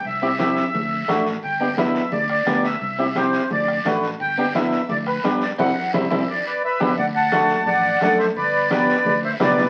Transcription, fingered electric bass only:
X:1
M:4/4
L:1/8
Q:1/4=173
K:G
V:1 name="Fingered electric bass" clef=bass
C,,4 D,,2 A,,,2 | G,,,4 D,,2 D,,2 | C,,4 D,,2 A,,,2 | G,,,4 D,,2 G,,2 |
C,, z C,, C,, z3 G,,, | D,,4 A,,,2 F,,2 | G,,,4 D,,2 B,,,2 |]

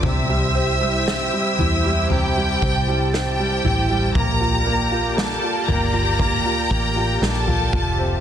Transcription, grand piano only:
X:1
M:4/4
L:1/16
Q:1/4=58
K:Bblyd
V:1 name="Grand piano"
C, G, C G, C G, E G, C, G, C G, C G, E G, | B, F B, F B, F B, F B, F B, F B, F F C |]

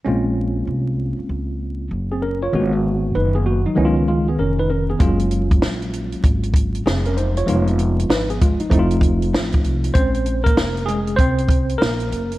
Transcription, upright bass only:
X:1
M:4/4
L:1/16
Q:"Swing 16ths" 1/4=97
K:Bbm
V:1 name="Upright bass" clef=bass
B,,,4 C,,3 z D,,4 G,,,4 | A,,,4 G,,,3 z D,,4 F,,,4 | G,,,4 B,,,3 z A,,,4 F,,,4 | F,,,4 A,,,3 z F,,,4 z2 C,,2 |
B,,,4 F,,,4 C,,4 B,,,2 G,,,2 |]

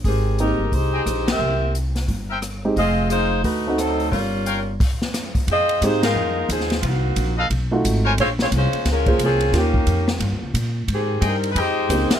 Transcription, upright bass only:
X:1
M:4/4
L:1/8
Q:"Swing" 1/4=177
K:Fm
V:1 name="Upright bass" clef=bass
A,,,3 G,,, C,,2 B,,,2 | C,,4 G,,,4 | F,,,4 =D,,4 | G,,,4 z4 |
F,,2 A,,2 F,,2 E,,2 | C,,2 B,,,2 =B,,,2 A,,,2 | B,,,2 C,, z D,,2 C,,2 | E,,2 F,,2 (3G,, E,, D,, B,,2 |
A,,2 G,,2 F,,2 D,, z |]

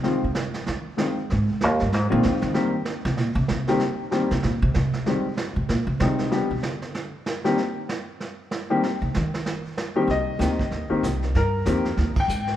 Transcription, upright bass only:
X:1
M:4/4
L:1/8
Q:"Swing" 1/4=191
K:Cm
V:1 name="Upright bass" clef=bass
C, C,3 E, z3 | A,, C,, E,, G,, A,, B,, D, E,- | E, z2 C, B,, C, C,2 | z3 C, B,, C, C,2 |
z3 C, B,, C, C,2 | z =B,, D,3 z3 | z8 | z C, E,3 z3 |
C,,2 D,,2 E,, z C,,2 | G,,2 F,,2 E,, z A,,2 |]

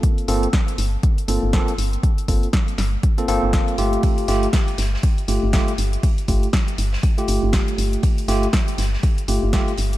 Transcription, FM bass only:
X:1
M:4/4
L:1/16
Q:"Swing 16ths" 1/4=120
K:Fmix
V:1 name="FM bass" clef=bass
z2 G,,, z3 G,,, z3 G,,, G,,, z2 G,,, z | z2 G,,, z3 G,,, z3 G,,, G,,, z2 G,,, z | z2 G,,, z3 G,,, z3 G,,, G,,, z2 G,,, z | z2 G,,, z3 G,,, z3 G,,, G,,, z2 G,,, z |
z2 G,,, z3 G,,, z3 G,,, G,,, z2 G,,, z |]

